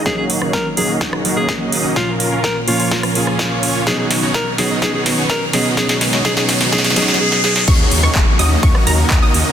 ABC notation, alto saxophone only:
X:1
M:4/4
L:1/16
Q:1/4=126
K:Ebm
V:1 name="Alto saxophone"
A A z2 B z A z4 A z4 | F z3 B z F3 z6 z | A A z2 B z A z A A z2 B z A z | A A z2 A A z2 A A A A A A A A |
z16 |]